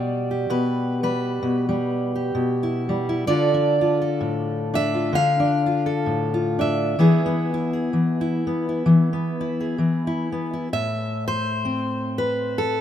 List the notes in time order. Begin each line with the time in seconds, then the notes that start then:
Already playing: B2 G3 D5
0.31 G4
0.50 B2 B4
1.03 G3 B4
1.43 B2
1.69 G3
2.16 G4
2.35 B2
2.63 E4
2.89 G3
3.09 E4
3.27 D3 D4 F4 A4 D5
3.54 D4
3.81 F4
4.02 A4
4.21 A2
4.74 D4 E5
4.94 F4
5.13 D3 F5
5.40 D4
5.66 F4
5.86 A4
6.06 A2
6.34 F4
6.59 D4 E5
6.99 E3 B3 E4 G#4
7.26 B3
7.54 E4
7.73 G#4
7.93 E3
8.21 E4
8.47 B3
8.69 E4
8.86 E3
9.13 B3
9.41 E4
9.60 G#4
9.78 E3
10.07 E4
10.32 B3
10.54 E4
10.73 A2 E5
11.28 C5
11.65 C4
12.18 B4
12.58 A4